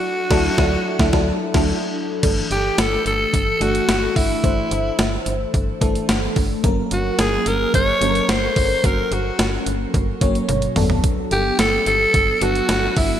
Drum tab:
CC |--x--------x----|x---------------|----------------|----------------|
HH |----------------|x-x-x-x-x-xxx-o-|x-x-x-x-x-xxx-o-|x-x-x-x-x-xxx-o-|
SD |--o-o--oo--o----|----o-------o---|----o-------o---|----o-------o---|
T1 |----------------|----------------|----------------|----------------|
T2 |----------------|----------------|----------------|----------------|
FT |----------------|----------------|----------------|----------------|
BD |--o-o--oo--o----|o-------o-----o-|o-------o-o---o-|o-------o-----o-|

CC |----------------|----------------|
HH |x-x-x-x-x-xxxxo-|x-x-x-x-x-xxx-o-|
SD |----o-----------|----o-------o---|
T1 |------------o---|----------------|
T2 |--------------o-|----------------|
FT |---------------o|----------------|
BD |o-------o-o-----|o-------o-----o-|